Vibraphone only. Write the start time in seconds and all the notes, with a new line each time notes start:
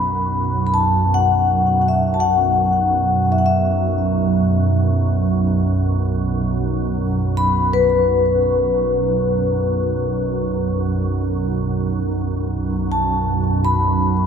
Already playing: B5
0.67 B5
0.74 A5
1.14 F#5
1.82 F#5
1.88 E5
2.14 A5
2.20 F#5
3.32 E5
3.38 F#5
3.46 E5
7.37 B5
7.73 B4
12.92 A5
13.65 B5